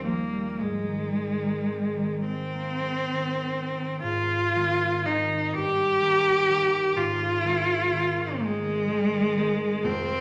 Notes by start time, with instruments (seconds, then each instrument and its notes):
Already playing: harp D#2 G3 D#4
0.05 harp F3, cello A#3
0.33 harp G3
0.60 harp G#2, cello G#3
0.89 harp D#3
1.16 harp G#3
1.43 harp D#3
1.70 harp C4
1.97 harp D#3
2.24 harp G#3, cello C4
2.53 harp A#3
2.82 harp G#3
3.13 harp D#3
3.45 harp C4
3.75 harp D#3
4.02 harp G#1 G#2, cello F4
4.55 harp D#3 G#3 C4
5.05 harp D#3 G#3 C4, cello D#4
5.53 harp G2, cello G4
6.01 harp D#3 A#3 D#4
6.48 harp D#3 A#3 D#4
6.95 harp G#1 G#2, cello F4
7.44 harp D#3 G#3 C4
7.92 harp D#3 G#3 C4
8.40 harp D#3 G#3 C4, cello G#3
8.89 harp D#3 G#3 C4
9.37 harp D#3 G#3 C4
9.83 harp F1 F2, cello C4